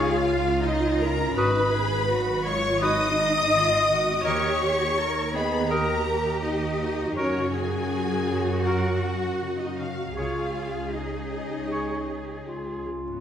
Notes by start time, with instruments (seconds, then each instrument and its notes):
Already playing: double bass section C#2, harp C#3 G#3 C#4 G#4 G#5, viola section F4, french horn section F4, clarinet G#4, cello section G#4, oboe C#5, violin section F5, flute C#6
0.10 harp C#5
0.27 cello section F4, harp G#4
0.47 harp C#4
0.63 harp G#3, viola section D#4, french horn section D#4, violin section D#5
0.83 harp C#4
1.00 harp G#3, viola section A#4, french horn section A#4, violin section A#5
1.20 harp C#4
1.36 double bass section G#1, harp G#2, cello section D#4, clarinet F#4, french horn section B4, viola section B4, oboe B4, violin section B5, flute D#6
1.56 harp D#3
1.73 harp B3, cello section G#4
1.92 harp D#4
2.09 harp F#3, cello section F#4
2.29 harp B4
2.45 cello section F4, french horn section C#5, viola section C#5, harp D#5, violin section C#6
2.81 cello section D#4, clarinet F#4, oboe B4, french horn section D#5, viola section D#5, harp D#5, violin section D#6, flute D#6
3.01 harp B4
3.19 harp D#4
3.37 harp B3
3.54 harp D#3, cello section F4
3.73 harp B3
3.90 harp D#3, cello section F#4
4.09 harp B3
4.25 double bass section D#2, harp D#3, cello section G4, clarinet G4, oboe A#4, viola section C#5, french horn section C#5, violin section C#6, flute D#6
4.44 harp A#3
4.62 harp D#4
4.98 cello section A#4
5.16 harp D#5
5.34 viola section B3, cello section G#4, french horn section D#5, harp G5, violin section B5
5.52 harp A#5
5.69 cello section G4, clarinet G4, oboe A#4, french horn section A#4, viola section A#4, harp G5, violin section A#5, flute D#6
5.88 harp D#5
6.05 harp G4
6.24 harp D#4
6.42 harp A#3, french horn section D#4, viola section D#4, violin section D#5
6.60 harp D#4
6.79 harp A#3
6.97 harp D#4
7.17 harp F#2, double bass section F#2, french horn section C#4, viola section C#4, cello section F#4, clarinet F#4, oboe A#4, violin section C#5, flute C#6
7.37 harp C#3
7.55 harp A#3, french horn section G#4, viola section G#4, violin section G#5
7.74 harp C#4
7.93 harp F#4
8.12 harp A#4
8.29 harp C#5
8.65 french horn section F#4, viola section F#4, clarinet F#4, oboe A#4, harp C#5, violin section F#5, flute C#6
8.84 harp A#4
9.03 harp C#4
9.22 harp A#3
9.41 harp C#3
9.59 harp A#3, viola section D#4, french horn section D#4, violin section D#5
9.78 harp C#3, french horn section F#4, violin section F5, viola section F5
9.99 harp A#3
10.16 double bass section C#2, harp C#3, viola section F4, french horn section F4, cello section G#4, clarinet G#4, oboe C#5, violin section F5, flute C#6
10.37 harp G#3
10.57 harp C#4
10.76 harp G#4
10.94 harp C#4, french horn section D#4, viola section D#4, violin section D#5
11.14 harp C#5
11.34 harp G#5
11.53 harp C#5
11.70 clarinet G#4, oboe C#5, harp G#5, flute C#6
11.91 harp C#5
12.10 harp G#4
12.29 harp C#4
12.47 harp G#3, clarinet F4
12.67 harp C#4
12.87 harp G#3
13.06 harp G#2 C#4
13.12 harp B3
13.17 harp D#4